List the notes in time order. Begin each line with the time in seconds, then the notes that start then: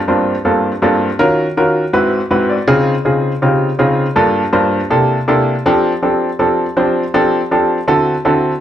0.08 G2 A#3 C4 D4 F4 C5
0.45 G2 A#3 C4 D4 F4 A4
0.82 G2 A#3 C4 D4 F4 A4
1.19 D#3 C#4 F4 F#4 A#4
1.57 D#3 C#4 F4 F#4 A#4
1.93 G#2 C4 E4 F#4 B4
2.31 G#2 C4 E4 F#4 B4 F#5
2.49 D5
2.67 C#3 C4 D#4 F4 G#4
3.05 C#3 C4 D#4 F4 G#4
3.42 C#3 C4 D#4 F4 G4
3.79 C#3 C4 D#4 F4 G#4
4.16 G2 A#3 D4 F4 A4
4.53 G2 A#3 D4 F4 C5
4.90 C3 A#3 D4 E4 G4 A4
5.28 C3 A#3 D4 E4 G4 A4
5.66 F3 C4 D4 G4 A4
6.02 F3 C4 D4 G4 A4
6.39 F3 C4 D4 G4 A4
6.77 F3 C4 D4 G4 C5
7.14 F3 C4 D4 G4 A4
7.51 F3 C4 D4 G4 A4
7.88 D3 C4 E4 F#4 A4
8.25 D3 C4 E4 F#4 A4